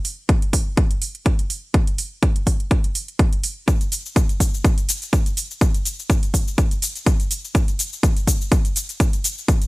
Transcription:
0.05 open hi-hat loud
0.29 kick loud
0.29 closed hi-hat medium
0.42 closed hi-hat soft
0.53 kick medium
0.53 open hi-hat loud
0.77 kick loud
0.77 closed hi-hat medium
0.91 closed hi-hat soft
1.02 open hi-hat loud
1.15 closed hi-hat soft
1.26 kick loud
1.26 closed hi-hat medium
1.39 closed hi-hat soft
1.50 open hi-hat loud
1.74 kick loud
1.74 closed hi-hat medium
1.87 closed hi-hat soft
1.98 open hi-hat loud
2.23 kick loud
2.23 closed hi-hat medium
2.36 closed hi-hat soft
2.47 kick medium
2.47 open hi-hat loud
2.60 closed hi-hat soft
2.71 kick loud
2.71 closed hi-hat medium
2.84 closed hi-hat soft
2.95 open hi-hat loud
3.08 closed hi-hat soft
3.19 kick loud
3.19 closed hi-hat medium
3.33 closed hi-hat soft
3.44 open hi-hat loud
3.68 kick loud
3.68 closed hi-hat medium
3.68 shaker soft
3.81 closed hi-hat soft
3.81 shaker soft
3.92 open hi-hat medium
3.92 shaker medium
4.06 shaker soft
4.16 kick loud
4.16 closed hi-hat medium
4.16 shaker soft
4.29 closed hi-hat soft
4.29 shaker soft
4.40 kick medium
4.40 open hi-hat loud
4.40 shaker medium
4.54 shaker soft
4.64 kick loud
4.64 closed hi-hat medium
4.64 shaker soft
4.78 closed hi-hat soft
4.78 shaker soft
4.89 open hi-hat loud
4.89 shaker medium
5.02 closed hi-hat soft
5.02 shaker soft
5.13 kick loud
5.13 closed hi-hat medium
5.13 shaker soft
5.26 closed hi-hat soft
5.26 shaker soft
5.37 open hi-hat loud
5.37 shaker medium
5.51 shaker soft
5.61 kick loud
5.61 closed hi-hat medium
5.61 shaker soft
5.74 closed hi-hat soft
5.74 shaker soft
5.85 open hi-hat medium
5.85 shaker medium
5.99 shaker soft
6.10 kick loud
6.10 closed hi-hat medium
6.10 shaker soft
6.23 closed hi-hat soft
6.23 shaker soft
6.34 kick medium
6.34 open hi-hat loud
6.34 shaker medium
6.48 shaker soft
6.58 kick loud
6.58 closed hi-hat medium
6.58 shaker soft
6.71 closed hi-hat soft
6.71 shaker soft
6.82 open hi-hat loud
6.82 shaker medium
6.96 closed hi-hat soft
6.96 shaker soft
7.06 kick loud
7.06 closed hi-hat medium
7.06 shaker soft
7.20 closed hi-hat soft
7.20 shaker soft
7.31 open hi-hat loud
7.31 shaker medium
7.45 shaker soft
7.55 kick loud
7.55 closed hi-hat medium
7.55 shaker soft
7.68 closed hi-hat medium
7.68 shaker soft
7.79 open hi-hat medium
7.79 shaker medium
7.93 shaker soft
8.03 kick loud
8.03 closed hi-hat medium
8.03 shaker soft
8.16 closed hi-hat soft
8.16 shaker soft
8.27 kick medium
8.27 open hi-hat medium
8.27 shaker medium
8.41 shaker soft
8.52 kick loud
8.52 closed hi-hat medium
8.52 shaker soft
8.65 closed hi-hat medium
8.65 shaker soft
8.76 open hi-hat loud
8.76 shaker medium
8.89 closed hi-hat soft
8.89 shaker soft
9.00 kick loud
9.00 closed hi-hat medium
9.00 shaker soft
9.13 closed hi-hat medium
9.13 shaker soft
9.24 open hi-hat medium
9.24 shaker medium
9.38 shaker soft
9.48 kick loud
9.48 closed hi-hat medium
9.48 shaker soft
9.62 closed hi-hat medium
9.62 shaker soft

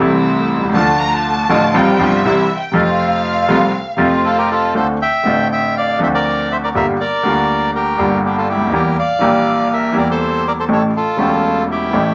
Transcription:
0.00 0.60 C2 medium
0.00 0.70 C3 medium
0.00 0.70 E3 medium
0.00 0.70 A3 medium
0.00 0.71 A3 medium
0.00 0.70 C4 medium
0.00 0.71 E4 medium
0.56 0.62 B1 soft
0.62 0.68 C2 medium
0.69 0.75 C#2 medium
0.73 1.46 D2 medium
0.73 0.75 D3 medium
0.73 1.46 D3 medium
0.73 1.45 F3 medium
0.73 1.45 A3 medium
0.73 1.46 A3 medium
0.73 1.45 D4 medium
0.73 1.46 F4 medium
0.73 0.98 A5 loud
0.77 1.47 F4 medium
0.99 1.12 A#5 loud
1.11 1.74 A5 loud
1.49 1.70 A1 medium
1.49 1.70 A2 medium
1.49 1.70 D3 medium
1.49 1.70 F3 medium
1.49 1.70 A3 medium
1.49 1.70 D4 medium
1.49 1.70 F4 medium
1.74 1.95 C2 medium
1.74 1.95 C3 medium
1.74 1.95 F3 medium
1.74 1.95 G3 medium
1.74 1.95 C4 medium
1.74 1.95 F4 medium
1.74 2.00 G5 medium
1.99 2.20 G1 medium
1.99 2.20 G2 medium
1.99 2.20 C3 medium
1.99 2.20 F3 medium
1.99 2.20 G3 medium
1.99 2.20 C4 medium
1.99 2.20 F4 medium
1.99 2.58 E5 medium
2.25 2.46 C2 medium
2.25 2.46 C3 medium
2.25 2.45 E3 medium
2.25 2.45 G3 medium
2.25 2.46 G3 medium
2.25 2.46 C4 medium
2.25 2.46 E4 medium
2.58 2.74 G5 medium
2.72 3.45 F2 medium
2.72 3.44 C3 medium
2.72 3.45 F3 medium
2.72 3.45 A3 medium
2.72 3.46 A3 medium
2.72 3.45 C4 medium
2.72 3.46 F4 medium
2.72 4.25 F5 medium
2.76 3.46 F4 medium
3.48 3.70 C2 medium
3.48 3.70 C3 medium
3.48 3.70 F3 medium
3.48 3.70 A3 medium
3.48 3.70 C4 medium
3.48 3.70 F4 medium
3.97 4.71 F2 medium
3.97 4.70 C3 medium
3.97 4.71 F3 medium
3.97 4.71 A3 medium
3.97 4.71 C4 medium
3.97 4.72 F4 medium
4.26 4.37 F4 medium
4.26 4.38 A4 medium
4.38 4.50 G4 medium
4.38 4.51 A#4 medium
4.51 4.74 F4 medium
4.51 4.74 A4 medium
4.75 4.96 D2 medium
4.75 4.96 D3 medium
4.75 4.96 A3 medium
4.75 4.96 C4 soft
4.75 4.96 F4 medium
4.75 4.88 A4 medium
4.75 4.87 C5 medium
5.02 5.48 E5 medium
5.02 5.48 G5 medium
5.23 5.97 A1 medium
5.23 5.97 A2 medium
5.23 5.96 D3 medium
5.23 5.96 A3 medium
5.23 5.97 C4 medium
5.23 5.98 F4 medium
5.52 5.75 E5 medium
5.52 5.77 G5 medium
5.77 6.00 D5 medium
5.77 5.99 F5 medium
5.99 6.71 D2 medium
5.99 6.71 D3 medium
5.99 6.71 F3 medium
5.99 6.72 C4 medium
5.99 6.72 F4 medium
6.03 6.08 C5 medium
6.03 6.08 E5 medium
6.14 6.49 A#4 medium
6.14 6.52 D5 medium
6.52 6.58 C5 medium
6.52 6.57 E5 medium
6.63 6.70 A#4 medium
6.63 6.69 D5 medium
6.75 6.96 G1 medium
6.75 6.96 G2 medium
6.75 6.96 D3 medium
6.75 6.96 G3 medium
6.75 6.96 A#3 medium
6.75 6.96 F4 medium
6.75 6.87 A#4 medium
6.75 6.87 E5 medium
7.00 7.71 A#4 medium
7.00 7.71 D5 medium
7.23 7.96 D2 medium
7.23 7.96 D3 medium
7.23 7.96 G3 medium
7.23 7.96 A#3 medium
7.23 7.97 F4 medium
7.75 8.21 G4 medium
7.75 8.21 A#4 medium
7.97 8.70 G1 medium
7.97 8.70 G2 medium
7.97 8.69 D3 medium
7.97 8.70 G3 medium
7.97 8.70 A#3 medium
8.01 8.71 F4 medium
8.25 8.36 D4 medium
8.25 8.37 G4 medium
8.37 8.49 F4 medium
8.37 8.48 A4 medium
8.49 8.72 E4 medium
8.49 8.74 G4 medium
8.55 8.61 C#2 soft
8.61 8.67 D2 medium
8.67 8.73 D#2 medium
8.72 8.94 E2 medium
8.72 8.94 E3 medium
8.72 8.94 G3 medium
8.72 8.94 A#3 medium
8.72 8.94 G4 medium
8.72 8.97 G4 medium
8.72 8.97 A#4 medium
8.99 9.68 D5 medium
8.99 9.74 F5 medium
9.19 9.91 A#1 medium
9.19 9.92 A#2 medium
9.19 9.90 E3 medium
9.19 9.91 G3 medium
9.19 9.92 A#3 medium
9.23 9.93 G4 medium
9.73 9.95 A#4 medium
9.73 9.97 E5 medium
9.92 10.65 E2 medium
9.92 10.65 E3 medium
9.92 10.65 G3 medium
9.92 10.65 A#3 medium
9.97 10.66 G4 medium
9.97 10.08 A#4 medium
9.97 10.08 D5 medium
10.11 10.44 A4 medium
10.11 10.48 C5 medium
10.47 10.53 A#4 medium
10.47 10.52 D5 medium
10.60 10.65 A4 medium
10.60 10.65 C5 medium
10.68 10.90 A1 medium
10.68 10.90 A2 medium
10.68 10.90 E3 medium
10.68 10.90 A3 medium
10.68 10.90 C#4 medium
10.68 10.90 G4 medium
10.72 10.83 A4 medium
10.72 10.83 C#5 medium
10.97 11.65 F4 medium
10.97 11.65 A4 medium
11.17 11.89 E1 medium
11.17 11.89 E2 medium
11.17 11.88 C#3 medium
11.17 11.89 A3 medium
11.17 11.89 C#4 medium
11.17 11.90 G4 medium
11.71 12.14 E4 medium
11.71 12.14 G4 medium
11.91 12.14 A1 medium
11.91 12.14 A2 medium
11.91 12.14 E3 medium
11.91 12.14 A3 medium
11.91 12.14 C#4 medium
11.95 12.14 G4 medium

